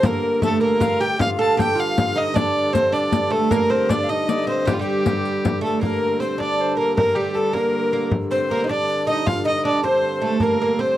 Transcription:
0.00 1.19 G2 medium
0.00 1.18 D3 medium
0.00 0.39 A#3 medium
0.00 riq medium
0.00 frame drum medium
0.05 0.45 A#4 medium
0.05 0.43 A#4 medium
0.42 0.60 A3 medium
0.42 0.62 A4 medium
0.42 0.61 A4 loud
0.42 riq medium
0.42 frame drum medium
0.61 0.81 A#3 medium
0.61 0.80 A#4 medium
0.61 1.02 A#4 medium
0.80 1.00 F4 medium
0.80 0.99 F5 medium
0.80 riq medium
0.80 frame drum medium
1.01 1.19 G4 medium
1.01 1.20 G5 loud
1.01 1.23 G5 medium
1.01 riq soft
1.18 5.83 G2 medium
1.18 5.82 D3 medium
1.18 1.38 F4 loud
1.18 1.63 F5 loud
1.18 1.30 F5 loud
1.18 riq medium
1.18 frame drum medium
1.39 1.57 A4 medium
1.39 1.58 A5 medium
1.57 1.75 G4 medium
1.57 1.82 G5 loud
1.57 riq medium
1.57 frame drum medium
1.62 1.78 G5 medium
1.75 2.15 F4 medium
1.75 2.19 F5 medium
1.75 riq soft
1.80 2.19 F5 loud
1.98 riq medium
1.98 frame drum medium
2.16 2.34 D#4 medium
2.16 2.39 D#5 medium
2.16 2.37 D#5 loud
2.34 2.71 D4 medium
2.34 2.75 D5 loud
2.34 2.70 D5 medium
2.34 riq medium
2.34 frame drum medium
2.73 2.92 C4 medium
2.73 2.94 C5 loud
2.73 riq medium
2.73 frame drum medium
2.92 3.33 D4 medium
2.92 3.33 D5 medium
2.92 3.35 D5 medium
2.92 riq soft
2.92 frame drum soft
3.12 riq medium
3.12 frame drum medium
3.30 3.51 A3 medium
3.30 3.52 A4 medium
3.30 3.55 A4 medium
3.51 3.71 A#3 medium
3.51 3.72 A#4 loud
3.51 3.91 A#4 medium
3.51 riq medium
3.51 frame drum medium
3.70 3.89 C4 medium
3.70 3.92 C5 medium
3.89 4.07 D4 medium
3.89 4.05 D5 medium
3.89 4.11 D5 medium
3.89 riq medium
3.89 frame drum medium
4.04 4.12 F5 medium
4.09 4.45 D#4 medium
4.09 4.30 D#5 medium
4.09 4.67 D#5 medium
4.09 riq soft
4.29 4.48 D5 medium
4.29 riq medium
4.47 4.67 C4 medium
4.47 4.69 C5 medium
4.65 4.78 G3 medium
4.65 4.75 G4 medium
4.65 4.80 G4 medium
4.65 riq medium
4.65 frame drum medium
4.74 4.82 F4 medium
4.79 5.59 G3 medium
4.79 5.62 G4 medium
4.79 5.59 G4 medium
5.06 riq medium
5.06 frame drum medium
5.25 riq soft
5.45 riq medium
5.45 frame drum medium
5.61 5.81 A3 medium
5.61 5.81 A4 medium
5.61 5.82 A4 medium
5.81 10.41 G2 medium
5.81 10.42 D3 medium
5.81 6.21 A#3 medium
5.81 6.22 A#4 medium
5.81 6.18 A#4 medium
5.81 frame drum medium
6.20 6.38 C4 medium
6.20 6.39 C5 medium
6.20 6.42 C5 medium
6.20 frame drum soft
6.38 6.78 D4 medium
6.38 6.62 D5 medium
6.38 6.76 D5 medium
6.38 frame drum medium
6.61 6.79 C5 medium
6.77 6.96 A#3 medium
6.77 6.96 A#4 medium
6.97 7.15 A#3 medium
6.97 7.17 A#4 loud
6.97 7.18 A#4 medium
6.97 frame drum medium
7.15 7.53 G3 medium
7.15 7.37 G4 medium
7.15 7.34 G4 medium
7.34 7.53 A4 medium
7.34 7.55 A4 medium
7.34 frame drum soft
7.53 7.92 A#3 medium
7.53 8.12 A#4 medium
7.53 8.08 A#4 medium
7.53 frame drum medium
7.93 8.11 A#3 medium
8.11 frame drum medium
8.31 8.51 C4 medium
8.31 8.39 C5 medium
8.31 8.72 C5 medium
8.50 8.64 A#3 medium
8.50 8.68 A#4 loud
8.50 frame drum soft
8.64 8.69 D#4 medium
8.69 9.07 D4 medium
8.69 9.05 D5 medium
8.69 8.87 D5 medium
8.69 frame drum medium
8.87 9.05 D5 medium
9.07 9.26 D#4 medium
9.07 9.25 D#5 medium
9.07 9.28 D#5 medium
9.26 9.45 F4 medium
9.26 9.32 F5 medium
9.26 9.46 F5 loud
9.26 frame drum medium
9.44 9.65 D#4 medium
9.44 9.80 D#5 medium
9.44 9.64 D#5 medium
9.65 9.83 D4 medium
9.65 9.83 D5 medium
9.65 frame drum soft
9.83 10.23 C4 medium
9.83 10.37 C5 medium
9.83 10.20 C5 medium
9.83 frame drum medium
10.03 frame drum soft
10.22 10.40 A3 medium
10.22 10.44 A4 medium
10.40 10.97 G2 medium
10.40 10.97 D3 medium
10.40 10.58 A#3 medium
10.40 10.77 A#4 medium
10.40 10.82 A#4 medium
10.40 frame drum medium
10.62 10.80 A#3 medium
10.79 10.97 C4 medium
10.79 10.97 C5 medium
10.79 frame drum soft

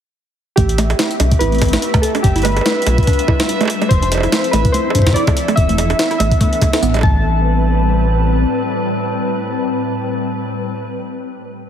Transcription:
0.56 0.93 A1 loud
0.56 2.22 A3 medium
0.56 0.69 A3 medium
0.56 2.22 C4 medium
0.56 1.15 G4 medium
0.56 2.22 G4 medium
0.56 7.25 E5 medium
0.56 kick loud
0.56 closed hi-hat medium
0.69 closed hi-hat soft
0.78 0.86 A3 loud
0.78 closed hi-hat medium
0.78 high bongo medium
0.90 closed hi-hat soft
0.90 high bongo medium
0.99 1.10 A3 medium
0.99 snare loud
0.99 closed hi-hat medium
1.11 closed hi-hat soft
1.20 1.34 C2 medium
1.20 1.27 D4 medium
1.20 closed hi-hat medium
1.20 high bongo soft
1.31 kick loud
1.31 closed hi-hat soft
1.39 1.77 A1 medium
1.39 1.48 E4 loud
1.39 2.04 B4 medium
1.39 closed hi-hat medium
1.52 1.61 A3 medium
1.52 closed hi-hat soft
1.55 closed hi-hat soft
1.58 closed hi-hat soft
1.62 kick loud
1.62 closed hi-hat medium
1.62 high bongo medium
1.65 closed hi-hat soft
1.68 closed hi-hat soft
1.73 1.79 A3 loud
1.73 snare loud
1.73 closed hi-hat soft
1.82 closed hi-hat medium
1.94 2.03 A3 medium
1.94 kick loud
1.94 closed hi-hat soft
1.94 high bongo medium
2.02 2.24 A4 medium
2.02 closed hi-hat medium
2.15 2.21 D4 medium
2.15 closed hi-hat soft
2.15 high bongo medium
2.23 2.60 G1 loud
2.23 3.89 G3 medium
2.23 3.89 D4 medium
2.23 3.89 F4 medium
2.23 2.45 G4 medium
2.23 3.89 B4 medium
2.23 kick loud
2.23 closed hi-hat medium
2.36 2.42 E4 loud
2.36 closed hi-hat soft
2.38 closed hi-hat soft
2.42 3.65 B4 loud
2.42 closed hi-hat soft
2.45 2.56 A3 medium
2.45 closed hi-hat loud
2.45 high bongo medium
2.52 closed hi-hat soft
2.57 closed hi-hat soft
2.57 high bongo soft
2.61 high bongo soft
2.66 2.73 A3 loud
2.66 snare loud
2.66 closed hi-hat medium
2.66 high bongo soft
2.71 high bongo soft
2.82 closed hi-hat soft
2.87 3.00 B1 medium
2.87 2.98 A3 medium
2.87 closed hi-hat medium
2.87 high bongo medium
2.98 kick loud
2.98 closed hi-hat soft
3.03 closed hi-hat soft
3.07 3.15 D4 medium
3.07 kick loud
3.07 closed hi-hat medium
3.13 closed hi-hat soft
3.19 closed hi-hat soft
3.28 3.36 E4 loud
3.28 kick loud
3.28 high bongo soft
3.40 3.49 A3 medium
3.40 snare loud
3.49 closed hi-hat medium
3.61 3.67 A3 loud
3.61 closed hi-hat soft
3.61 high bongo soft
3.63 high bongo soft
3.65 high bongo medium
3.68 closed hi-hat medium
3.68 high bongo medium
3.82 3.90 A3 medium
3.82 closed hi-hat soft
3.82 high bongo medium
3.89 4.27 F1 loud
3.89 5.56 F3 medium
3.89 5.56 C4 medium
3.89 5.56 E4 medium
3.89 7.00 A4 medium
3.89 4.54 C5 loud
3.89 kick loud
3.89 closed hi-hat medium
4.02 4.08 D4 medium
4.02 closed hi-hat soft
4.12 closed hi-hat loud
4.12 high bongo soft
4.15 high bongo soft
4.17 high bongo soft
4.20 4.29 E4 loud
4.20 closed hi-hat soft
4.20 high bongo soft
4.23 high bongo soft
4.32 4.43 A3 medium
4.32 snare loud
4.32 closed hi-hat medium
4.44 closed hi-hat soft
4.51 4.67 A1 medium
4.51 4.61 A3 loud
4.51 4.74 B4 medium
4.51 closed hi-hat medium
4.51 high bongo soft
4.65 kick loud
4.65 closed hi-hat soft
4.72 4.85 A3 medium
4.72 5.16 C5 loud
4.72 closed hi-hat medium
4.90 high bongo medium
4.95 5.02 D4 medium
4.95 kick soft
4.95 closed hi-hat medium
4.99 kick medium
5.02 kick medium
5.07 kick medium
5.07 snare loud
5.07 closed hi-hat soft
5.09 kick medium
5.13 5.23 E4 loud
5.13 5.53 D5 loud
5.13 kick medium
5.13 closed hi-hat medium
5.27 5.36 A3 medium
5.27 kick loud
5.27 closed hi-hat soft
5.27 high bongo medium
5.37 closed hi-hat medium
5.48 5.54 A3 loud
5.48 closed hi-hat soft
5.48 high bongo soft
5.56 5.93 E1 medium
5.56 7.02 E3 medium
5.56 7.02 B3 medium
5.56 7.02 D4 medium
5.56 6.17 E5 loud
5.56 kick loud
5.56 closed hi-hat medium
5.69 5.78 A3 medium
5.69 closed hi-hat soft
5.78 closed hi-hat medium
5.78 high bongo soft
5.90 5.96 D4 medium
5.90 closed hi-hat soft
5.90 high bongo soft
5.99 snare loud
5.99 closed hi-hat medium
6.11 6.17 E4 loud
6.11 closed hi-hat soft
6.18 6.34 A1 medium
6.18 6.31 A3 medium
6.18 6.98 E5 loud
6.18 closed hi-hat medium
6.18 high bongo soft
6.32 kick loud
6.32 closed hi-hat soft
6.41 6.48 A3 loud
6.41 kick loud
6.41 closed hi-hat medium
6.53 closed hi-hat soft
6.62 6.73 A3 medium
6.62 kick loud
6.62 closed hi-hat medium
6.62 high bongo soft
6.73 6.79 A4 loud
6.73 snare loud
6.73 closed hi-hat soft
6.82 7.03 A1 medium
6.82 6.93 B3 loud
6.82 closed hi-hat medium
6.94 7.00 G3 medium
6.94 closed hi-hat soft
6.94 high bongo soft
6.97 high bongo soft
6.99 high bongo soft
7.01 8.45 A1 loud
7.01 10.79 A2 medium
7.01 10.79 G3 medium
7.01 7.42 A3 medium
7.01 10.79 C4 medium
7.01 10.79 B4 medium
7.01 10.79 A5 medium
7.01 kick loud
7.01 high bongo soft

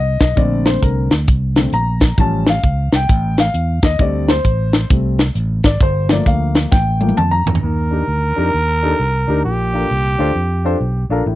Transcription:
0.00 0.16 C2 medium
0.00 0.20 D#5 medium
0.20 0.35 B1 medium
0.20 0.38 D#5 medium
0.20 kick medium
0.20 snare loud
0.20 closed hi-hat medium
0.36 0.76 A#1 loud
0.36 1.07 D3 medium
0.36 1.07 A3 soft
0.36 1.08 C4 medium
0.36 0.64 D5 medium
0.36 kick loud
0.36 closed hi-hat medium
0.66 0.82 C5 medium
0.66 snare loud
0.66 closed hi-hat medium
0.82 1.07 C2 medium
0.82 1.09 A#4 medium
0.82 kick medium
0.82 closed hi-hat medium
1.11 1.25 D2 medium
1.11 snare medium
1.11 closed hi-hat medium
1.28 1.67 C2 medium
1.28 kick loud
1.28 closed hi-hat medium
1.56 1.72 D3 soft
1.56 1.72 A3 soft
1.56 1.72 C4 medium
1.56 snare loud
1.56 closed hi-hat medium
1.73 2.11 A#1 medium
1.73 2.16 A#5 loud
1.73 closed hi-hat medium
2.00 kick medium
2.00 snare loud
2.00 closed hi-hat medium
2.17 2.57 A1 loud
2.17 2.52 F3 medium
2.17 2.52 G3 soft
2.17 2.52 C#4 medium
2.17 2.46 A5 loud
2.17 kick loud
2.17 closed hi-hat medium
2.46 2.95 F5 loud
2.46 snare loud
2.46 closed hi-hat medium
2.64 2.88 C#2 medium
2.64 kick medium
2.64 closed hi-hat medium
2.92 3.06 C2 medium
2.92 3.41 G5 loud
2.92 snare loud
2.92 closed hi-hat medium
3.09 3.48 A1 loud
3.09 kick loud
3.09 closed hi-hat loud
3.38 3.85 F5 loud
3.38 snare loud
3.38 closed hi-hat medium
3.54 3.79 E2 medium
3.54 closed hi-hat medium
3.82 3.97 D#2 medium
3.82 4.01 D#5 loud
3.82 kick loud
3.82 snare loud
3.82 closed hi-hat medium
3.99 4.38 D2 loud
3.99 4.33 G3 medium
3.99 4.33 A3 medium
3.99 4.33 C4 medium
3.99 4.30 D5 medium
3.99 kick loud
3.99 closed hi-hat medium
4.28 4.87 C5 loud
4.28 snare loud
4.28 closed hi-hat medium
4.45 4.83 A1 medium
4.45 kick medium
4.45 closed hi-hat medium
4.73 snare loud
4.73 closed hi-hat medium
4.90 5.29 C2 medium
4.90 5.16 G3 soft
4.90 5.16 A3 soft
4.90 5.17 C4 medium
4.90 kick loud
4.90 closed hi-hat medium
5.19 snare loud
5.19 closed hi-hat medium
5.35 5.60 A1 loud
5.35 closed hi-hat medium
5.63 5.78 G#1 medium
5.63 5.80 D5 medium
5.63 kick medium
5.63 snare loud
5.63 closed hi-hat medium
5.80 6.19 G1 loud
5.80 6.10 C5 medium
5.80 kick loud
5.80 closed hi-hat medium
6.09 6.69 F3 soft
6.09 6.69 A3 medium
6.09 6.69 A#3 medium
6.09 6.27 D5 medium
6.09 snare loud
6.09 closed hi-hat medium
6.26 6.65 D2 medium
6.26 6.73 F5 medium
6.26 kick medium
6.26 closed hi-hat medium
6.55 snare medium
6.55 closed hi-hat medium
6.72 7.11 A1 loud
6.72 7.18 G5 medium
6.72 kick loud
6.72 snare medium
7.00 7.15 F3 medium
7.00 7.15 A3 soft
7.00 7.16 A#3 medium
7.00 high tom medium
7.09 high tom medium
7.17 7.42 F2 medium
7.17 7.33 A5 loud
7.17 mid tom medium
7.31 7.60 A#5 loud
7.46 7.60 E2 loud
7.46 floor tom loud
7.55 floor tom medium
7.63 8.01 D#2 medium
7.63 8.33 D#3 soft
7.63 9.41 A#4 loud
7.91 8.01 D4 medium
7.91 8.02 D#4 medium
7.91 8.02 G4 medium
7.91 8.02 A#4 medium
8.08 8.32 D2 medium
8.36 8.51 F2 medium
8.36 8.47 D4 medium
8.36 8.47 D#4 medium
8.36 8.47 G4 medium
8.36 8.48 A#4 medium
8.54 8.93 D#2 medium
8.83 8.93 D4 medium
8.83 8.93 D#4 medium
8.83 8.93 G4 medium
8.83 8.93 A4 medium
8.99 9.24 C2 medium
9.27 9.42 D2 medium
9.27 9.38 D4 medium
9.27 9.38 D#4 medium
9.27 9.39 G4 medium
9.27 9.39 A#4 medium
9.45 9.84 A#1 medium
9.45 10.16 A#2 medium
9.45 11.07 G4 medium
9.74 9.84 D4 medium
9.74 9.84 F4 medium
9.74 9.84 A4 soft
9.74 9.85 A#4 medium
9.91 10.15 C2 medium
10.18 10.33 D2 medium
10.18 10.29 D4 medium
10.18 10.29 F4 medium
10.18 10.30 A4 medium
10.18 10.30 C5 medium
10.35 10.74 F2 medium
10.65 10.75 D4 medium
10.65 10.75 F4 medium
10.65 10.75 A4 medium
10.65 10.76 C5 medium
10.80 11.06 B1 medium
11.10 11.24 A#1 medium
11.10 11.21 D4 medium
11.10 11.21 F4 medium
11.10 11.21 A4 medium
11.10 11.22 A#4 medium
11.26 11.35 A1 medium
11.26 11.35 A2 medium

